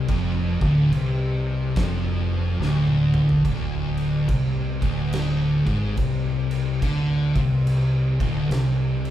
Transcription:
0.08 fingered electric bass F1, distorted electric guitar F2, kick, crash
0.61 fingered electric bass D1, distorted electric guitar D2, kick
0.91 fingered electric bass C2, distorted electric guitar C3, crash
1.76 fingered electric bass F1, distorted electric guitar F2, kick, snare, crash
2.60 fingered electric bass D1, distorted electric guitar D2, snare
2.87 high tom
3.14 mid tom
3.29 floor tom
3.44 fingered electric bass D1, distorted electric guitar D2, kick, crash
3.97 crash
4.28 fingered electric bass C2, distorted electric guitar C3, kick, crash
4.81 fingered electric bass D1, distorted electric guitar D2, kick, crash
5.13 snare, crash
5.66 fingered electric bass G#1, distorted electric guitar G#2, kick, crash
5.97 fingered electric bass C2, distorted electric guitar C3, kick, crash
6.51 crash
6.81 fingered electric bass D2, distorted electric guitar D3, kick, crash
7.35 fingered electric bass C2, distorted electric guitar C3, kick, crash
7.67 crash
8.20 fingered electric bass D1, distorted electric guitar D2, kick, crash
8.50 fingered electric bass C2, distorted electric guitar C3, snare, crash
9.05 crash

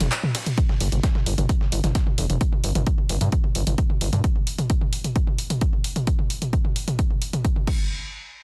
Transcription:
0.00 analog synth bass F1, closed hi-hat, mid tom
0.12 snare, clap, closed hi-hat, ride
0.23 mid tom
0.35 snare, closed hi-hat, open hi-hat, ride
0.46 closed hi-hat, mid tom
0.58 kick, closed hi-hat
0.69 snare, mid tom
0.80 analog synth bass G1, closed hi-hat, open hi-hat
0.92 analog synth bass G1, closed hi-hat, mid tom
1.03 kick, snare, closed hi-hat
1.15 snare, mid tom
1.26 analog synth bass G1, closed hi-hat, open hi-hat
1.38 analog synth bass G1, closed hi-hat, mid tom
1.49 kick, closed hi-hat
1.61 snare, mid tom
1.72 analog synth bass G1, closed hi-hat, open hi-hat
1.84 analog synth bass G1, snare, closed hi-hat, mid tom
1.95 kick, snare, closed hi-hat
2.07 mid tom
2.18 analog synth bass F1, closed hi-hat, open hi-hat
2.30 analog synth bass F1, closed hi-hat, mid tom
2.41 kick, closed hi-hat
2.52 mid tom
2.64 analog synth bass G1, open hi-hat
2.75 analog synth bass G1, closed hi-hat, mid tom
2.87 kick, closed hi-hat
2.98 mid tom
3.09 analog synth bass G1, open hi-hat
3.21 analog synth bass G2, closed hi-hat, mid tom
3.32 kick, closed hi-hat
3.44 mid tom
3.55 analog synth bass G1, open hi-hat
3.67 analog synth bass G1, closed hi-hat, mid tom
3.78 kick, closed hi-hat
3.90 mid tom
4.01 analog synth bass G1, open hi-hat
4.13 analog synth bass G2, closed hi-hat, mid tom
4.24 kick, closed hi-hat
4.36 mid tom
4.47 open hi-hat
4.58 closed hi-hat, mid tom
4.70 kick, closed hi-hat
4.81 mid tom
4.93 open hi-hat
5.04 closed hi-hat, mid tom
5.16 kick, closed hi-hat
5.27 mid tom
5.38 open hi-hat
5.50 closed hi-hat, mid tom
5.61 kick, closed hi-hat
5.73 mid tom
5.84 open hi-hat
5.96 closed hi-hat, mid tom
6.07 kick, closed hi-hat
6.19 mid tom
6.30 open hi-hat
6.42 closed hi-hat, mid tom
6.53 kick, closed hi-hat
6.65 mid tom
6.76 open hi-hat
6.88 closed hi-hat, mid tom
6.99 kick, closed hi-hat
7.10 mid tom
7.22 open hi-hat
7.33 closed hi-hat, mid tom
7.45 kick, closed hi-hat
7.56 mid tom
7.67 kick, crash

